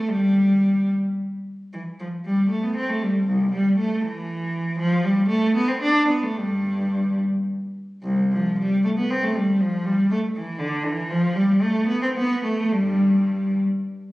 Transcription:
0.09 0.90 G3 medium
1.73 1.81 E3 soft
2.00 2.08 F3 soft
2.25 2.50 G3 medium
2.49 2.62 A3 soft
2.63 2.76 B3 soft
2.76 2.89 C4 medium
2.90 3.02 A3 soft
3.03 3.28 G3 soft
3.28 3.52 C2 medium
3.53 3.77 G3 medium
3.78 4.02 A3 medium
4.05 4.78 E3 medium
4.79 5.03 F3 medium
5.04 5.29 G3 medium
5.28 5.54 A3 medium
5.55 5.68 B3 medium
5.68 5.81 C4 medium
5.82 6.08 D4 medium
6.08 6.21 B3 medium
6.23 6.36 A3 medium
6.36 7.15 G2 soft
6.36 7.20 G3 medium
8.04 8.31 C2 soft
8.32 8.58 F3 medium
8.59 8.83 G3 medium
8.84 8.89 A3 medium
8.98 9.09 B3 soft
9.10 9.22 C4 medium
9.23 9.35 A3 soft
9.35 9.60 G3 medium
9.60 9.85 F3 medium
9.86 10.10 G3 medium
10.11 10.19 A3 medium
10.36 10.60 E3 medium
10.59 10.84 D3 medium
10.84 11.10 E3 medium
11.10 11.36 F3 medium
11.35 11.62 G3 medium
11.62 11.89 A3 medium
11.87 12.02 B3 medium
12.02 12.08 C4 medium
12.16 12.44 B3 medium
12.44 12.72 A3 medium
12.72 13.53 G2 medium
12.72 13.57 G3 medium

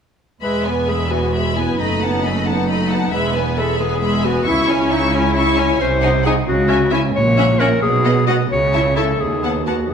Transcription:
0.42 1.75 E1 soft
0.42 1.75 E2 soft
0.42 0.64 G#3 soft
0.42 0.89 B4 medium
0.42 0.64 E5 soft
0.42 0.64 B5 soft
0.64 0.89 B3 soft
0.64 0.89 B4 soft
0.64 0.88 G#5 soft
0.88 1.11 G#3 soft
0.88 1.09 G#4 soft
0.88 1.11 E5 soft
0.88 1.11 B5 soft
1.10 1.34 B3 soft
1.10 1.57 F#4 soft
1.10 1.33 B4 soft
1.10 1.33 G#5 soft
1.33 1.55 G#3 soft
1.33 1.54 E5 soft
1.33 1.55 B5 soft
1.55 1.79 B3 soft
1.55 1.80 E4 soft
1.55 1.78 B4 soft
1.55 1.79 G#5 soft
1.78 3.13 F#1 soft
1.78 3.13 F#2 soft
1.78 2.01 A3 soft
1.78 2.25 D#4 medium
1.78 1.99 D#5 soft
1.78 2.00 B5 soft
2.01 2.25 B3 soft
2.01 2.23 F#5 soft
2.01 2.24 A5 soft
2.23 2.47 A3 soft
2.23 2.47 C#4 soft
2.23 2.46 D#5 soft
2.23 2.46 B5 soft
2.45 3.13 D#4 soft
2.45 2.68 F#5 soft
2.45 2.68 A5 soft
2.49 2.70 B3 soft
2.68 2.89 A3 soft
2.68 2.89 D#5 soft
2.68 2.89 B5 soft
2.89 3.13 B3 soft
2.89 3.12 F#5 soft
2.89 3.13 A5 soft
3.11 4.45 E1 soft
3.11 4.45 E2 soft
3.11 3.34 G#3 soft
3.11 3.59 B4 medium
3.11 3.32 E5 soft
3.11 3.34 B5 soft
3.34 3.58 B3 soft
3.34 3.57 B4 soft
3.34 3.57 G#5 soft
3.57 3.80 G#3 soft
3.57 3.78 A4 medium
3.57 3.80 E5 soft
3.57 3.80 B5 soft
3.79 4.02 B3 soft
3.79 4.26 G#4 medium
3.79 4.02 B4 soft
3.79 4.02 G#5 soft
4.01 4.23 G#3 soft
4.01 4.22 E5 soft
4.01 4.22 B5 soft
4.24 4.47 B3 soft
4.24 4.47 F#4 medium
4.24 4.47 B4 soft
4.24 4.47 G#5 soft
4.45 5.80 C#2 soft
4.45 5.80 C#3 soft
4.45 4.68 E4 soft
4.45 4.91 E4 medium
4.45 4.67 E5 soft
4.45 4.67 C#6 soft
4.69 4.91 C#4 soft
4.69 4.91 C#5 soft
4.69 4.92 G#5 soft
4.91 5.13 D#4 medium
4.91 5.14 E4 soft
4.91 5.14 E5 soft
4.91 5.14 C#6 soft
5.13 5.36 C#4 soft
5.13 5.79 E4 medium
5.13 5.36 C#5 soft
5.13 5.36 G#5 soft
5.35 5.56 E4 soft
5.35 5.56 E5 soft
5.35 5.56 C#6 soft
5.56 5.79 C#4 soft
5.56 5.79 C#5 soft
5.56 5.80 G#5 soft
5.80 6.36 C2 medium
5.80 6.36 C3 medium
5.80 6.24 C5 medium
6.01 6.10 D#4 soft
6.01 6.09 F#5 soft
6.01 6.10 G#5 soft
6.23 6.32 D#4 soft
6.23 6.35 G#4 medium
6.23 6.31 F#5 soft
6.23 6.33 G#5 soft
6.47 7.03 C#2 medium
6.47 7.03 C#3 soft
6.47 6.91 F#4 medium
6.68 6.76 C#4 soft
6.68 6.76 E5 soft
6.68 6.78 G#5 soft
6.91 6.99 C#4 soft
6.91 7.02 E4 medium
6.91 6.98 E5 soft
6.91 7.01 G#5 soft
7.15 7.71 A#1 medium
7.15 7.71 A#2 medium
7.15 7.61 C#5 medium
7.37 7.44 C#4 soft
7.37 7.44 E5 soft
7.37 7.45 F#5 soft
7.59 7.67 C#4 soft
7.59 7.82 A#4 medium
7.59 7.67 E5 soft
7.59 7.67 F#5 soft
7.82 8.39 B1 medium
7.82 8.39 B2 medium
7.82 8.26 G#4 medium
8.05 8.12 B3 soft
8.05 8.12 D#5 soft
8.05 8.12 F#5 soft
8.27 8.36 B3 soft
8.27 8.37 F#4 medium
8.27 8.34 D#5 soft
8.27 8.35 F#5 soft
8.51 9.08 C#2 medium
8.51 9.09 C#3 soft
8.51 8.96 C#5 medium
8.73 8.81 E4 soft
8.73 8.81 E5 soft
8.73 8.81 A5 soft
8.96 9.04 E4 soft
8.96 9.22 A4 medium
8.96 9.04 E5 soft
8.96 9.04 A5 soft
9.20 9.78 D#2 soft
9.20 9.79 D#2 soft
9.20 9.65 G#4 medium
9.43 9.51 B3 soft
9.43 9.51 F#5 soft
9.43 9.51 A5 soft
9.66 9.74 B3 soft
9.66 9.91 F#4 medium
9.66 9.75 F#5 soft
9.66 9.74 A5 soft
9.90 9.94 E1 soft
9.90 9.94 E2 soft
9.90 9.94 G#4 soft

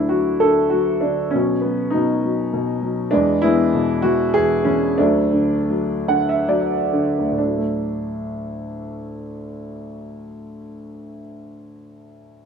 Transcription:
0.00 1.30 D2 medium
0.00 0.41 D3 soft
0.00 0.10 F#3 medium
0.00 0.39 A3 soft
0.00 1.01 D4 medium
0.00 0.11 E4 medium
0.09 0.72 F#3 soft
0.09 0.42 F#4 medium
0.40 1.04 D3 soft
0.40 0.70 A4 medium
0.70 1.32 F#3 medium
0.70 1.00 F#4 medium
1.01 1.33 D4 medium
1.05 1.34 D3 medium
1.31 1.63 F#3 medium
1.31 1.60 C#4 medium
1.35 1.93 B2 medium
1.61 1.92 F#3 soft
1.61 1.92 B3 medium
1.90 2.23 F#3 medium
1.90 2.78 B3 medium
1.90 2.77 D#4 medium
1.95 2.52 B2 soft
2.24 2.81 F#3 medium
2.53 3.12 B2 medium
2.82 3.12 F#3 medium
3.11 4.34 E2 medium
3.11 3.42 G#3 medium
3.11 3.43 B3 medium
3.11 3.40 D4 medium
3.42 4.03 E3 medium
3.42 4.30 G#3 medium
3.42 4.31 B3 medium
3.42 4.04 E4 loud
3.75 4.95 B2 medium
4.02 4.65 E3 medium
4.02 4.35 F#4 loud
4.34 4.97 E2 medium
4.34 4.63 G#4 loud
4.64 4.98 E3 medium
4.64 4.99 C#4 medium
4.98 7.17 D2 medium
4.98 5.69 F#3 medium
4.98 6.89 A3 medium
4.98 6.88 D4 medium
5.33 6.07 D3 medium
5.70 6.47 F#3 medium
6.08 6.91 D3 medium
6.08 6.27 F#5 medium
6.29 6.48 E5 medium
6.49 7.35 F#3 medium
6.49 7.34 D5 medium
6.93 7.37 D3 medium
7.19 10.99 D2 soft
7.32 11.12 A2 soft
7.38 11.18 D4 medium
7.45 11.25 F#3 soft
7.58 11.38 A3 soft

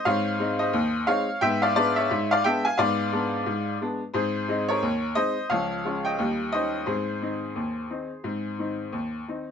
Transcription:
0.05 0.34 G#2 loud
0.05 0.25 C4 medium
0.05 0.56 C#5 medium
0.05 0.59 F5 loud
0.39 0.58 G#3 medium
0.39 0.58 C4 medium
0.39 0.58 D#4 medium
0.59 1.04 C5 medium
0.59 1.07 D#5 medium
0.73 1.02 D#2 loud
1.07 1.26 G#3 medium
1.07 1.26 C4 medium
1.07 1.27 D#4 medium
1.07 1.39 C#5 medium
1.07 1.41 F5 loud
1.41 1.70 G#2 loud
1.41 1.62 B3 medium
1.41 1.61 E5 medium
1.41 1.61 G5 loud
1.62 1.74 D5 medium
1.62 1.75 F5 loud
1.76 1.95 G#3 medium
1.76 1.95 B3 medium
1.76 1.95 D4 medium
1.76 1.95 B4 medium
1.76 1.96 D5 loud
1.96 2.28 C#5 medium
1.96 2.30 E5 loud
2.11 2.39 G#2 loud
2.31 2.44 D5 medium
2.31 2.44 F5 loud
2.44 2.63 G#3 medium
2.44 2.64 B3 medium
2.44 2.64 D4 medium
2.44 2.63 E5 medium
2.44 2.64 G5 loud
2.65 2.76 F5 medium
2.65 2.78 G#5 loud
2.78 3.07 G#2 loud
2.78 2.98 B3 medium
2.78 3.76 D5 medium
2.78 3.80 F5 medium
3.12 3.31 G#3 medium
3.12 3.31 B3 medium
3.12 3.31 D4 medium
3.46 3.75 G#2 medium
3.81 4.00 G#3 medium
3.81 4.00 B3 medium
3.81 4.00 D4 medium
4.14 4.43 G#2 loud
4.14 4.34 C4 medium
4.14 4.65 G#4 medium
4.14 4.68 C5 medium
4.48 4.67 G#3 medium
4.48 4.67 C4 medium
4.48 4.67 D#4 medium
4.69 5.14 A#4 medium
4.69 5.16 C#5 loud
4.82 5.11 D#2 medium
5.15 5.34 G#3 medium
5.15 5.35 C4 medium
5.15 5.35 D#4 medium
5.15 5.48 C5 medium
5.15 5.50 D#5 loud
5.50 5.79 C#2 medium
5.50 5.70 F3 medium
5.50 6.01 C#5 medium
5.50 6.04 F5 loud
5.85 6.03 G#3 medium
5.85 6.04 C#4 medium
5.85 6.04 F4 medium
6.05 6.50 D#5 medium
6.05 6.53 G5 medium
6.19 6.48 D#2 medium
6.19 6.39 G3 medium
6.52 6.72 D#3 medium
6.52 6.72 C#4 soft
6.52 6.72 D#4 medium
6.52 6.85 C5 medium
6.52 6.87 D#5 medium
6.86 7.16 G#2 medium
6.86 7.07 C4 soft
6.86 9.23 G#4 medium
6.86 9.26 C5 medium
7.22 7.40 D#3 soft
7.22 7.41 C4 medium
7.22 7.41 D#4 medium
7.56 7.85 D#2 medium
7.90 8.09 D#3 soft
7.90 8.09 C4 soft
7.90 8.09 D#4 soft
8.24 8.53 G#2 medium
8.24 8.44 C4 soft
8.59 8.77 D#3 soft
8.59 8.78 C4 soft
8.59 8.78 D#4 soft
8.93 9.22 D#2 medium
9.28 9.47 D#3 soft
9.28 9.47 C4 soft
9.28 9.47 D#4 soft

